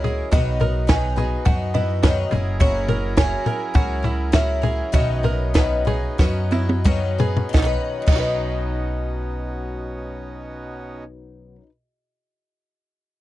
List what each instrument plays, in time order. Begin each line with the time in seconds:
Already playing: upright bass C#2, harmonium F#3 C#4 E4 G#4 A#4, kalimba C#5
0.04 twelve-string acoustic guitar C#4 E4 A#4, five-string banjo G#4, floor tom
0.31 upright bass B1, twelve-string acoustic guitar B2 D#3 F#3 B3 D#4 B4, harmonium B3 D#4 F#4, five-string banjo F#4, kalimba D#5, kick, floor tom
0.60 twelve-string acoustic guitar F#3 B3 D#4 B4, five-string banjo A#4, floor tom
0.87 twelve-string acoustic guitar B2 D#3 F#3 B3 D#4 B4, five-string banjo B4, kalimba G#5, kick, snare, floor tom
1.16 twelve-string acoustic guitar F#3 B3 D#4 B4, five-string banjo G#4, floor tom
1.45 upright bass F#2, twelve-string acoustic guitar F#3 B3 D#4 B4, five-string banjo F#4, kalimba F#5, kick, floor tom
1.74 twelve-string acoustic guitar F#3 B3 D#4 B4, five-string banjo E4, kalimba D#5, floor tom
2.03 twelve-string acoustic guitar B2 D#3 F#3 B3 D#4 B4, five-string banjo F#4, kalimba C#5, kick, snare, floor tom
2.31 upright bass F#1, harmonium F#3 C#4 E4 G#4 A#4, twelve-string acoustic guitar C#4 E4 A#4, five-string banjo G#4, floor tom
2.60 twelve-string acoustic guitar F#3 C#4 E4 A#4, five-string banjo F#4, kalimba C#5, kick, floor tom
2.88 twelve-string acoustic guitar C#4 E4 A#4, five-string banjo A#4, floor tom
3.17 twelve-string acoustic guitar F#3 C#4 E4 A#4, five-string banjo C#5, kalimba G#5, kick, snare, floor tom
3.46 twelve-string acoustic guitar C#4 E4 A#4, five-string banjo A#4, floor tom
3.74 upright bass C#2, twelve-string acoustic guitar F#3 C#4 E4 A#4, five-string banjo F#4, kalimba F#5, kick, floor tom
4.03 twelve-string acoustic guitar C#4 E4 A#4, five-string banjo E4, floor tom
4.32 twelve-string acoustic guitar F#3 C#4 E4 A#4, five-string banjo F#4, kalimba E5, kick, snare, floor tom
4.62 twelve-string acoustic guitar C#4 E4 A#4, five-string banjo G#4, floor tom
4.92 upright bass B1, twelve-string acoustic guitar B2 D#3 F#3 C#4 D#4 B4, harmonium B3 D#4, five-string banjo F#4, kalimba D#5, kick, floor tom
5.23 twelve-string acoustic guitar F#3 C#4 D#4 B4, five-string banjo A#4, floor tom
5.54 twelve-string acoustic guitar B2 D#3 F#3 C#4 D#4 B4, five-string banjo B4, kick, snare, floor tom
5.85 twelve-string acoustic guitar F#3 C#4 D#4 B4, five-string banjo G#4, floor tom
6.18 upright bass F#2, twelve-string acoustic guitar F#3 C#4 D#4 B4, five-string banjo F#4, kick, snare
6.51 twelve-string acoustic guitar F#3 C#4 D#4 B4, five-string banjo E4, high tom
6.69 high tom
6.84 twelve-string acoustic guitar B2 D#3 F#3 C#4 D#4 B4, five-string banjo F#4, kick, mid tom
7.18 twelve-string acoustic guitar F#3 C#4 D#4 B4, five-string banjo G#4, floor tom
7.37 floor tom
7.49 twelve-string acoustic guitar B2 D#3
7.54 upright bass B1, harmonium B2 B3 C#4 D#4 F#4, twelve-string acoustic guitar F#3, five-string banjo B3, kalimba D#5, kick, snare
7.58 twelve-string acoustic guitar C#4, five-string banjo D#4
7.62 twelve-string acoustic guitar D#4 B4, five-string banjo F#4 B4
8.02 twelve-string acoustic guitar B2
8.06 upright bass B1, twelve-string acoustic guitar D#3 F#3, five-string banjo B3, kalimba D#5, kick, crash
8.12 twelve-string acoustic guitar C#4 D#4, five-string banjo D#4 F#4
8.18 twelve-string acoustic guitar B4, five-string banjo B4